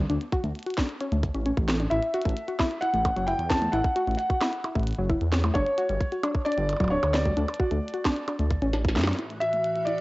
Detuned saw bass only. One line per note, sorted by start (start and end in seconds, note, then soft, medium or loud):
0.10 0.18 D2 loud
0.44 0.52 D2 medium
1.12 1.29 D2 loud
1.35 1.52 A1 loud
1.57 1.87 A1 medium
1.92 2.00 A1 loud
2.26 2.34 A1 medium
2.94 3.11 A1 loud
3.16 3.33 F#1 loud
3.39 3.69 E2 medium
3.73 3.82 A1 loud
4.07 4.16 A1 medium
4.75 4.92 A1 loud
4.98 5.15 F#1 loud
5.21 5.51 E2 medium
5.55 5.64 G1 loud
5.89 5.98 G1 medium
6.57 6.74 G1 loud
6.80 6.97 D1 loud
7.03 7.32 D2 medium
7.37 7.46 D2 loud
7.71 7.80 D2 medium
8.39 8.56 D2 loud
8.62 8.98 A1 loud
8.96 9.13 F#2 loud